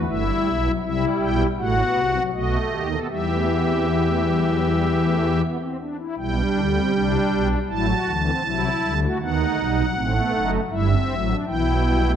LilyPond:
<<
  \new Staff \with { instrumentName = "Pipe organ" } { \time 4/4 \key e \minor \tempo 4 = 79 << { e''4 e''8 g''8 fis''4 dis''4 | e''2.~ e''8 r8 | g''2 a''2 | fis''2 e''4 g''4 | } \\ { e'4 e'4 fis'4 fis'8 g'16 a'16 | g'2.~ g'8 r8 | e'16 d'8 c'16 d'4 e'16 fis'8 c'16 e'8. fis'16 | dis'4 c'16 b16 dis'8 e'16 c'8 d'16 e'4 | } >> }
  \new Staff \with { instrumentName = "Pipe organ" } { \clef bass \time 4/4 \key e \minor << { a16 g8 fis16 g4 a16 b8 fis16 a8. b16 | g16 a16 b16 c'16 b16 a16 g16 fis16 g8 a8 b16 c'16 d'16 e'16 | g2 fis8 e8 fis8 g16 a16 | b16 a16 g16 fis16 a4 g8 fis8 e16 fis16 g16 a16 | } \\ { <g,, g,>8 <b,, b,>8 <c, c>8 <b,, b,>8 <a,, a,>8 <c, c>8 <b,, b,>8 <dis, dis>8 | <e, e>2.~ <e, e>8 r8 | <b,, b,>8 <d, d>8 <c, c>8 <b,, b,>8 <a,, a,>8 <d, d>8 <c, c>8 <d, d>8 | <dis, dis>8 <b,, b,>8 <a,, a,>8 <fis,, fis,>8 <g,, g,>8 <a,, a,>8 <b,, b,>4 | } >> }
>>